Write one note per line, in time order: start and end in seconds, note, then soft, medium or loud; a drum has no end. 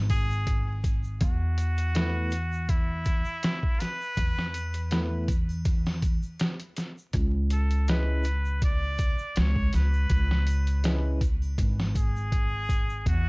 0.00 1.18 G#1 medium
0.10 0.80 G#4 loud
0.10 kick loud
0.10 closed hi-hat medium
0.10 shaker loud
0.31 shaker medium
0.47 kick medium
0.47 closed hi-hat medium
0.47 shaker soft
0.84 kick medium
0.84 closed hi-hat medium
0.84 shaker medium
1.04 shaker medium
1.21 3.23 E2 loud
1.21 2.71 F#4 loud
1.21 kick loud
1.21 closed hi-hat medium
1.21 shaker soft
1.58 closed hi-hat medium
1.58 shaker medium
1.78 closed hi-hat soft
1.78 shaker medium
1.95 2.31 A3 medium
1.95 2.31 B3 medium
1.95 2.31 E4 medium
1.95 2.32 B4 medium
1.95 snare loud
1.95 closed hi-hat medium
1.95 shaker soft
2.31 closed hi-hat medium
2.31 shaker loud
2.53 shaker medium
2.69 3.82 E4 loud
2.69 kick loud
2.69 closed hi-hat medium
2.69 shaker soft
3.05 kick medium
3.05 closed hi-hat medium
3.05 shaker loud
3.25 shaker medium
3.43 snare loud
3.43 closed hi-hat medium
3.43 shaker soft
3.63 kick loud
3.80 5.29 B4 loud
3.80 snare soft
3.80 closed hi-hat medium
3.80 triangle medium
3.80 shaker medium
4.01 shaker medium
4.17 6.19 E2 loud
4.17 kick loud
4.17 closed hi-hat medium
4.17 shaker soft
4.39 snare medium
4.54 closed hi-hat medium
4.54 triangle medium
4.54 shaker loud
4.74 closed hi-hat soft
4.74 shaker soft
4.91 5.27 A3 medium
4.91 5.27 B3 medium
4.91 5.28 E4 medium
4.91 5.28 B4 medium
4.91 snare loud
4.91 closed hi-hat medium
4.91 shaker soft
5.28 kick loud
5.28 closed hi-hat medium
5.28 shaker medium
5.49 triangle medium
5.49 shaker medium
5.65 kick loud
5.65 closed hi-hat medium
5.65 shaker soft
5.86 snare medium
5.86 triangle medium
6.02 kick medium
6.02 closed hi-hat medium
6.02 shaker medium
6.23 shaker soft
6.39 snare loud
6.39 closed hi-hat medium
6.39 shaker soft
6.60 closed hi-hat soft
6.76 snare soft
6.76 closed hi-hat medium
6.76 shaker medium
6.98 shaker soft
7.13 9.15 C#2 loud
7.13 kick loud
7.13 closed hi-hat medium
7.13 shaker soft
7.50 7.91 A4 medium
7.50 closed hi-hat medium
7.50 shaker loud
7.71 closed hi-hat soft
7.71 shaker medium
7.88 8.24 G#3 medium
7.88 8.24 C#4 medium
7.88 8.25 E4 medium
7.88 8.63 B4 loud
7.88 8.25 B4 medium
7.88 snare loud
7.88 closed hi-hat medium
7.88 shaker soft
8.24 closed hi-hat medium
8.24 shaker medium
8.45 shaker medium
8.61 9.40 D5 loud
8.61 kick loud
8.61 closed hi-hat loud
8.61 shaker soft
8.98 kick loud
8.98 closed hi-hat medium
8.98 shaker medium
9.19 shaker medium
9.36 9.70 C#2 loud
9.36 9.75 C#5 loud
9.36 snare loud
9.36 closed hi-hat medium
9.36 shaker soft
9.56 kick loud
9.73 10.07 C#2 medium
9.73 11.19 B4 loud
9.73 snare soft
9.73 closed hi-hat medium
9.73 triangle medium
9.73 shaker loud
9.93 shaker medium
10.10 11.55 C#2 loud
10.10 kick loud
10.10 closed hi-hat medium
10.10 shaker soft
10.31 snare medium
10.47 closed hi-hat medium
10.47 triangle medium
10.47 shaker loud
10.67 closed hi-hat soft
10.67 shaker soft
10.84 11.20 G#3 medium
10.84 11.20 C#4 medium
10.84 11.20 E4 medium
10.84 11.21 B4 medium
10.84 snare loud
10.84 closed hi-hat medium
10.84 shaker soft
11.21 kick loud
11.21 closed hi-hat medium
11.21 shaker medium
11.42 triangle medium
11.42 shaker soft
11.58 13.03 G#1 medium
11.58 kick loud
11.58 closed hi-hat loud
11.58 shaker soft
11.79 snare medium
11.79 triangle medium
11.95 13.03 G#4 loud
11.95 kick loud
11.95 closed hi-hat medium
11.95 shaker loud
12.16 shaker medium
12.32 kick loud
12.32 closed hi-hat medium
12.32 shaker soft
12.69 kick medium
12.69 closed hi-hat medium
12.69 shaker medium
12.90 shaker soft
13.06 13.29 E2 loud
13.06 13.29 F#4 loud
13.06 kick loud
13.06 closed hi-hat medium
13.06 shaker soft